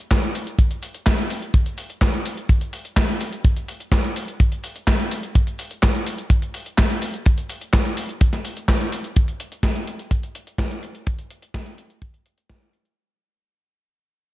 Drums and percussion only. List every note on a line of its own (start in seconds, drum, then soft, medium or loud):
0.11 kick loud
0.11 snare loud
0.11 clap loud
0.11 closed hi-hat medium
0.11 cabasa soft
0.23 closed hi-hat soft
0.23 cabasa soft
0.35 open hi-hat loud
0.35 cabasa medium
0.47 closed hi-hat soft
0.47 cabasa soft
0.59 kick loud
0.59 closed hi-hat medium
0.59 cabasa soft
0.71 closed hi-hat soft
0.71 cabasa soft
0.83 open hi-hat loud
0.83 cabasa medium
0.94 closed hi-hat soft
0.94 cabasa soft
1.06 kick loud
1.06 snare loud
1.06 clap loud
1.06 closed hi-hat medium
1.06 cabasa soft
1.18 closed hi-hat soft
1.18 cabasa soft
1.30 open hi-hat loud
1.30 cabasa medium
1.42 closed hi-hat soft
1.42 cabasa soft
1.54 kick loud
1.54 closed hi-hat medium
1.54 cabasa soft
1.66 closed hi-hat soft
1.66 cabasa soft
1.78 open hi-hat loud
1.78 cabasa medium
1.90 closed hi-hat soft
1.90 cabasa soft
2.01 kick loud
2.01 snare loud
2.01 clap loud
2.01 closed hi-hat medium
2.01 cabasa soft
2.14 closed hi-hat soft
2.14 cabasa soft
2.26 open hi-hat loud
2.26 cabasa medium
2.37 closed hi-hat soft
2.37 cabasa soft
2.49 kick loud
2.49 closed hi-hat medium
2.49 cabasa soft
2.61 closed hi-hat soft
2.61 cabasa soft
2.73 open hi-hat loud
2.73 cabasa medium
2.85 closed hi-hat soft
2.85 cabasa soft
2.97 kick loud
2.97 snare loud
2.97 clap loud
2.97 closed hi-hat medium
2.97 cabasa soft
3.09 closed hi-hat soft
3.09 cabasa soft
3.21 open hi-hat loud
3.21 cabasa medium
3.33 closed hi-hat soft
3.33 cabasa soft
3.45 kick loud
3.45 closed hi-hat medium
3.45 cabasa soft
3.57 closed hi-hat soft
3.57 cabasa soft
3.68 open hi-hat loud
3.68 cabasa medium
3.80 closed hi-hat soft
3.80 cabasa soft
3.92 kick loud
3.92 snare loud
3.92 clap loud
3.92 closed hi-hat medium
3.92 cabasa soft
4.04 closed hi-hat soft
4.04 cabasa soft
4.16 open hi-hat loud
4.16 cabasa medium
4.28 closed hi-hat soft
4.28 cabasa soft
4.40 kick loud
4.40 closed hi-hat medium
4.40 cabasa soft
4.52 closed hi-hat soft
4.52 cabasa soft
4.64 open hi-hat loud
4.64 cabasa medium
4.76 closed hi-hat soft
4.76 cabasa soft
4.87 kick medium
4.87 snare loud
4.87 clap loud
4.87 closed hi-hat medium
4.87 cabasa soft
4.99 closed hi-hat soft
4.99 cabasa soft
5.11 open hi-hat loud
5.11 cabasa medium
5.23 closed hi-hat soft
5.23 cabasa soft
5.35 kick loud
5.35 closed hi-hat medium
5.35 cabasa soft
5.47 closed hi-hat soft
5.47 cabasa soft
5.59 open hi-hat loud
5.59 cabasa medium
5.71 closed hi-hat soft
5.71 cabasa soft
5.83 kick medium
5.83 snare loud
5.83 clap loud
5.83 closed hi-hat medium
5.83 cabasa soft
5.95 closed hi-hat soft
5.95 cabasa soft
6.07 open hi-hat loud
6.07 cabasa medium
6.18 closed hi-hat soft
6.18 cabasa soft
6.30 kick loud
6.30 closed hi-hat medium
6.30 cabasa soft
6.42 closed hi-hat soft
6.42 cabasa soft
6.54 open hi-hat loud
6.54 cabasa medium
6.66 closed hi-hat soft
6.66 cabasa soft
6.78 kick loud
6.78 snare loud
6.78 clap loud
6.78 closed hi-hat medium
6.78 cabasa soft
6.90 closed hi-hat soft
6.90 cabasa soft
7.02 open hi-hat loud
7.02 cabasa medium
7.14 closed hi-hat soft
7.14 cabasa soft
7.26 kick loud
7.26 closed hi-hat medium
7.26 cabasa soft
7.38 closed hi-hat soft
7.38 cabasa soft
7.50 open hi-hat loud
7.50 cabasa medium
7.61 closed hi-hat soft
7.61 cabasa soft
7.73 kick loud
7.73 snare loud
7.73 clap loud
7.73 closed hi-hat medium
7.73 cabasa soft
7.85 closed hi-hat soft
7.85 cabasa soft
7.97 open hi-hat loud
7.97 cabasa medium
8.09 closed hi-hat soft
8.09 cabasa soft
8.21 kick loud
8.21 closed hi-hat medium
8.21 cabasa soft
8.33 snare soft
8.33 closed hi-hat soft
8.33 cabasa soft
8.45 open hi-hat loud
8.45 cabasa medium
8.57 closed hi-hat soft
8.57 cabasa soft
8.68 kick loud
8.68 snare loud
8.68 clap loud
8.68 closed hi-hat medium
8.68 cabasa soft
8.80 closed hi-hat soft
8.80 cabasa soft
8.92 open hi-hat loud
8.92 cabasa medium
9.04 closed hi-hat soft
9.04 cabasa soft
9.16 kick loud
9.16 closed hi-hat medium
9.28 closed hi-hat soft
9.40 closed hi-hat medium
9.52 closed hi-hat soft
9.63 kick loud
9.63 snare loud
9.63 closed hi-hat medium
9.76 closed hi-hat soft
9.87 closed hi-hat loud
9.99 closed hi-hat soft
10.11 kick loud
10.11 closed hi-hat medium
10.23 closed hi-hat soft
10.35 closed hi-hat medium
10.47 closed hi-hat soft
10.58 kick loud
10.58 snare loud
10.58 closed hi-hat medium
10.71 closed hi-hat soft
10.83 closed hi-hat medium
10.95 closed hi-hat soft
11.07 kick loud
11.07 closed hi-hat medium
11.19 closed hi-hat soft
11.30 closed hi-hat medium
11.42 closed hi-hat soft
11.54 kick loud
11.54 snare loud
11.54 closed hi-hat medium
11.66 closed hi-hat soft
11.78 closed hi-hat medium
11.90 closed hi-hat soft
12.02 kick loud
12.02 closed hi-hat medium
12.14 closed hi-hat soft
12.26 closed hi-hat medium
12.38 closed hi-hat soft
12.50 kick loud
12.50 snare loud
12.50 closed hi-hat medium
12.62 closed hi-hat soft
12.73 closed hi-hat medium
12.85 closed hi-hat soft